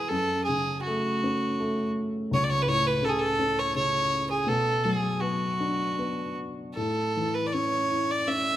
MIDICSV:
0, 0, Header, 1, 3, 480
1, 0, Start_track
1, 0, Tempo, 741656
1, 72, Time_signature, 3, 2, 24, 8
1, 1032, Tempo, 720288
1, 2952, Tempo, 763359
1, 4872, Tempo, 734394
1, 5550, End_track
2, 0, Start_track
2, 0, Title_t, "Fiddle"
2, 0, Program_c, 0, 110
2, 0, Note_on_c, 0, 68, 55
2, 56, Note_on_c, 0, 69, 65
2, 65, Note_off_c, 0, 68, 0
2, 283, Note_off_c, 0, 69, 0
2, 287, Note_on_c, 0, 68, 51
2, 525, Note_off_c, 0, 68, 0
2, 535, Note_on_c, 0, 66, 52
2, 1234, Note_off_c, 0, 66, 0
2, 1528, Note_on_c, 0, 73, 71
2, 1594, Note_on_c, 0, 74, 52
2, 1604, Note_off_c, 0, 73, 0
2, 1634, Note_on_c, 0, 73, 72
2, 1644, Note_off_c, 0, 74, 0
2, 1717, Note_on_c, 0, 71, 51
2, 1727, Note_off_c, 0, 73, 0
2, 1759, Note_on_c, 0, 73, 79
2, 1769, Note_off_c, 0, 71, 0
2, 1881, Note_on_c, 0, 71, 66
2, 1891, Note_off_c, 0, 73, 0
2, 1998, Note_on_c, 0, 69, 64
2, 2008, Note_off_c, 0, 71, 0
2, 2031, Note_on_c, 0, 68, 58
2, 2041, Note_off_c, 0, 69, 0
2, 2096, Note_on_c, 0, 69, 71
2, 2106, Note_off_c, 0, 68, 0
2, 2360, Note_on_c, 0, 73, 60
2, 2370, Note_off_c, 0, 69, 0
2, 2470, Note_off_c, 0, 73, 0
2, 2474, Note_on_c, 0, 73, 64
2, 2808, Note_off_c, 0, 73, 0
2, 2838, Note_on_c, 0, 68, 61
2, 2955, Note_on_c, 0, 69, 69
2, 2964, Note_off_c, 0, 68, 0
2, 3178, Note_on_c, 0, 68, 56
2, 3188, Note_off_c, 0, 69, 0
2, 3411, Note_on_c, 0, 66, 55
2, 3421, Note_off_c, 0, 68, 0
2, 4145, Note_off_c, 0, 66, 0
2, 4378, Note_on_c, 0, 69, 56
2, 4753, Note_on_c, 0, 71, 49
2, 4762, Note_off_c, 0, 69, 0
2, 4832, Note_on_c, 0, 74, 41
2, 4842, Note_off_c, 0, 71, 0
2, 4869, Note_on_c, 0, 73, 57
2, 4879, Note_off_c, 0, 74, 0
2, 5250, Note_on_c, 0, 74, 57
2, 5260, Note_off_c, 0, 73, 0
2, 5363, Note_on_c, 0, 76, 65
2, 5373, Note_off_c, 0, 74, 0
2, 5550, Note_off_c, 0, 76, 0
2, 5550, End_track
3, 0, Start_track
3, 0, Title_t, "Upright piano"
3, 0, Program_c, 1, 0
3, 0, Control_c, 1, 64, 127
3, 0, Note_on_c, 1, 47, 37
3, 0, Note_on_c, 1, 52, 36
3, 0, Note_on_c, 1, 56, 35
3, 67, Note_on_c, 1, 42, 42
3, 81, Control_c, 1, 64, 0
3, 83, Note_off_c, 1, 56, 0
3, 85, Note_off_c, 1, 47, 0
3, 86, Note_off_c, 1, 52, 0
3, 185, Control_c, 1, 64, 127
3, 315, Note_on_c, 1, 49, 36
3, 563, Note_on_c, 1, 57, 39
3, 800, Note_on_c, 1, 61, 37
3, 1023, Note_off_c, 1, 57, 0
3, 1033, Note_on_c, 1, 57, 40
3, 1246, Note_off_c, 1, 49, 0
3, 1480, Note_off_c, 1, 42, 0
3, 1490, Note_off_c, 1, 61, 0
3, 1496, Note_off_c, 1, 57, 0
3, 1511, Note_on_c, 1, 37, 43
3, 1518, Control_c, 1, 64, 0
3, 1627, Control_c, 1, 64, 127
3, 1747, Note_on_c, 1, 45, 39
3, 1984, Note_on_c, 1, 49, 39
3, 2229, Note_on_c, 1, 61, 37
3, 2459, Note_off_c, 1, 49, 0
3, 2469, Note_on_c, 1, 49, 40
3, 2680, Note_off_c, 1, 45, 0
3, 2925, Note_off_c, 1, 37, 0
3, 2931, Note_off_c, 1, 61, 0
3, 2938, Note_off_c, 1, 49, 0
3, 2945, Note_on_c, 1, 47, 43
3, 2958, Control_c, 1, 64, 0
3, 3067, Control_c, 1, 64, 127
3, 3187, Note_on_c, 1, 54, 36
3, 3417, Note_on_c, 1, 59, 35
3, 3661, Note_on_c, 1, 62, 33
3, 3892, Note_off_c, 1, 59, 0
3, 3901, Note_on_c, 1, 59, 34
3, 4125, Note_off_c, 1, 54, 0
3, 4364, Note_off_c, 1, 47, 0
3, 4372, Note_off_c, 1, 62, 0
3, 4377, Note_off_c, 1, 59, 0
3, 4394, Note_on_c, 1, 45, 38
3, 4399, Control_c, 1, 64, 0
3, 4524, Control_c, 1, 64, 127
3, 4644, Note_on_c, 1, 52, 34
3, 4880, Note_on_c, 1, 61, 32
3, 5123, Note_on_c, 1, 64, 31
3, 5351, Note_off_c, 1, 61, 0
3, 5361, Note_on_c, 1, 61, 38
3, 5550, Note_off_c, 1, 45, 0
3, 5550, Note_off_c, 1, 52, 0
3, 5550, Note_off_c, 1, 61, 0
3, 5550, Note_off_c, 1, 64, 0
3, 5550, End_track
0, 0, End_of_file